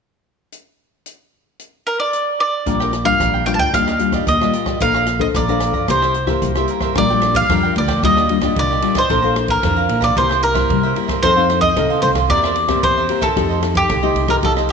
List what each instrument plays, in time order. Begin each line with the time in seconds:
0.52 closed hi-hat
1.06 closed hi-hat
1.59 closed hi-hat
1.87 mandolin A#4
2.00 mandolin D5
2.13 closed hi-hat
2.40 mandolin D5
2.66 upright bass A#1, nylon-string guitar A#2 G3 D4 F4, cavaquinho D4 A#4 D5 G5, kick, closed hi-hat
2.80 cavaquinho A#4 D5 G5, cross-stick
2.92 muted cavaquinho stroke, cross-stick, closed hi-hat
3.04 nylon-string guitar G3 D4 F4, mandolin F5, kick
3.20 upright bass A#1, nylon-string guitar F3, cavaquinho D4 A#4 D5 G5, kick, cross-stick, closed hi-hat
3.34 cavaquinho A#4 D5 G5
3.46 nylon-string guitar G3 D4 F4, mandolin G5, cross-stick, closed hi-hat
3.54 upright bass D2, mandolin A5
3.59 cavaquinho A#4 D5 G5, mandolin G5, kick
3.73 upright bass D#2, nylon-string guitar D#3 G3 D4 F4, cavaquinho D4 G4 D5 D#5, mandolin F5, kick, cross-stick, closed hi-hat
3.87 cavaquinho G4 D5 D#5, cross-stick, closed hi-hat
3.99 nylon-string guitar G3 D4 F4, muted cavaquinho stroke, closed hi-hat
4.12 cavaquinho G4 D5 D#5, kick, cross-stick, closed hi-hat
4.26 upright bass D#2, nylon-string guitar A#2, mandolin D#5, kick, closed hi-hat
4.41 nylon-string guitar G3 F4, cavaquinho G4 D5 D#5, cross-stick
4.53 cavaquinho D4 G4 D5 D#5, closed hi-hat
4.66 cavaquinho G4 D5 D#5, kick, cross-stick
4.80 upright bass A#1, nylon-string guitar A#3 D4 A4 C5, cavaquinho A4 D5 F5 A#5, mandolin F5, kick, closed hi-hat
4.94 cavaquinho D5 F5 A#5, cross-stick
5.06 muted cavaquinho stroke, cross-stick, closed hi-hat
5.19 nylon-string guitar D4 A4 C5, mandolin D#5, kick
5.34 upright bass A#1, nylon-string guitar F3, cavaquinho A4 D5 F5 A#5, mandolin D5, kick, cross-stick, closed hi-hat
5.48 nylon-string guitar D4 A4 C5, cavaquinho D5 F5 A#5, closed hi-hat
5.60 cross-stick, closed hi-hat
5.72 upright bass G2, cavaquinho D5 F5 A#5, kick
5.88 upright bass C2, nylon-string guitar C3 A#3 E4 G4, cavaquinho E4 A#4 C5 E5, mandolin C5, kick, cross-stick, closed hi-hat
6.02 cavaquinho A#4 C5 E5, cross-stick, closed hi-hat
6.14 muted cavaquinho stroke, closed hi-hat
6.27 nylon-string guitar A#3 E4 G4, cavaquinho A#4 C5 E5, kick, cross-stick
6.42 upright bass C2, nylon-string guitar G3, kick, closed hi-hat
6.55 nylon-string guitar A#3 E4 G4, cavaquinho A#4 C5 E5, cross-stick, closed hi-hat
6.68 cavaquinho E4 A#4 C5 E5, closed hi-hat
6.80 cavaquinho A#4 C5 E5, kick, cross-stick
6.95 upright bass A#1, nylon-string guitar A#2 G3 D4 F4, cavaquinho D4 A#4 D5 G5, mandolin D5, kick, cross-stick, ride
7.10 nylon-string guitar G3 D4 F4, cavaquinho A#4 D5 G5
7.22 muted cavaquinho stroke, cross-stick, ride
7.34 mandolin F5, kick, ride
7.49 upright bass F2, nylon-string guitar F3 G3 D4 F4, cavaquinho D4 A#4 D5 G5, kick, cross-stick, ride
7.63 cavaquinho A#4 D5 G5
7.76 upright bass D2, mandolin D5, ride
7.88 cavaquinho A#4 D5 G5, kick, cross-stick, ride
8.02 upright bass D#2, nylon-string guitar D#3 G3 D4 F4, cavaquinho D4 G4 D5 D#5, mandolin D#5, kick, ride
8.17 cavaquinho G4 D5 D#5, cross-stick
8.29 nylon-string guitar G3 D4 F4, muted cavaquinho stroke, ride
8.41 nylon-string guitar G3 D4 F4, cavaquinho G4 D5 D#5, kick, cross-stick, ride
8.56 upright bass C2, nylon-string guitar A#2, mandolin D5, kick, ride
8.71 cavaquinho G4 D5 D#5
8.82 nylon-string guitar G3 D4 F4, cavaquinho D4 G4 D5 D#5, ride
8.94 cavaquinho G4 D5 D#5, mandolin C5, kick, cross-stick, ride
9.09 upright bass A#1, nylon-string guitar A#3 D4 A4 C5, cavaquinho A4 D5 F5 A#5, kick, cross-stick, ride
9.22 nylon-string guitar D4 A4 C5, cavaquinho D5 F5 A#5
9.35 muted cavaquinho stroke, cross-stick, ride
9.48 mandolin A#4, kick, ride
9.62 upright bass F2, nylon-string guitar F3 D4 C5, cavaquinho A4 D5 F5 A#5, kick, cross-stick, ride
9.76 cavaquinho D5 F5 A#5
9.89 upright bass A#1, ride
10.01 cavaquinho D5 F5 A#5, mandolin D5, kick, cross-stick, ride
10.16 upright bass C2, nylon-string guitar C3 A#3 E4 G4, cavaquinho E4 A#4 C5 E5, mandolin C5, kick, ride
10.29 cavaquinho A#4 C5 E5, cross-stick
10.42 mandolin A#4, muted cavaquinho stroke, ride
10.54 nylon-string guitar A#3 E4 G4, cavaquinho A#4 C5 E5, kick, cross-stick, ride
10.70 upright bass C3, nylon-string guitar G3, kick, ride
10.83 cavaquinho A#4 C5 E5
10.95 nylon-string guitar A#3 E4 G4, cavaquinho E4 A#4 C5 E5, ride
11.08 cavaquinho A#4 C5 E5, kick, cross-stick, ride
11.22 upright bass F2, nylon-string guitar F3 C4 D#4 A4, cavaquinho D#4 A4 C5 F5, mandolin C5, kick, cross-stick, ride
11.37 nylon-string guitar C4 D#4 A4, cavaquinho A4 C5 F5
11.49 muted cavaquinho stroke, cross-stick, ride
11.61 mandolin D#5, kick, ride
11.76 upright bass C2, nylon-string guitar C3 C4 D#4 A4, cavaquinho D#4 A4 C5 F5, kick, cross-stick, ride
11.90 cavaquinho A4 C5 F5
12.02 upright bass C2, nylon-string guitar C4 D#4 A4, mandolin C5, ride
12.15 cavaquinho A4 C5 F5, kick, cross-stick, ride
12.28 upright bass E2, nylon-string guitar E3 A#3 C4 G4, cavaquinho E4 A#4 C5 E5, mandolin D5, kick, ride
12.43 cavaquinho A#4 C5 E5, cross-stick
12.56 muted cavaquinho stroke, ride
12.68 nylon-string guitar A#3 C4 G4, cavaquinho A#4 C5 E5, kick, cross-stick, ride
12.83 upright bass E2, nylon-string guitar E3, mandolin C5, kick, ride
12.97 cavaquinho A#4 C5 E5
13.08 nylon-string guitar A#3 C4 G4, cavaquinho E4 A#4 C5 E5, ride
13.21 mandolin A4, cavaquinho A#4 C5 E5, kick, cross-stick, ride
13.36 upright bass F2, nylon-string guitar F3 A3 D#4 G4, cavaquinho F4 A4 C5 D#5, kick, cross-stick, ride
13.49 cavaquinho A4 C5 D#5
13.61 nylon-string guitar A3 D#4 G4, muted cavaquinho stroke, cross-stick, ride
13.75 mandolin G4, kick, ride
13.89 upright bass C2, nylon-string guitar C3, cavaquinho F4 A4 C5 D#5, kick, cross-stick, ride
14.03 nylon-string guitar A3 D#4 G4, cavaquinho A4 C5 D#5
14.15 upright bass C2, ride
14.28 nylon-string guitar A3 D#4 G4, cavaquinho A4 C5 D#5, mandolin A#4, kick, cross-stick, ride
14.43 upright bass C2, nylon-string guitar F3 A3 D#4 G4, cavaquinho F4 A4 C5 D#5, mandolin A4, kick, ride
14.57 cavaquinho A4 C5 D#5, cross-stick
14.69 ride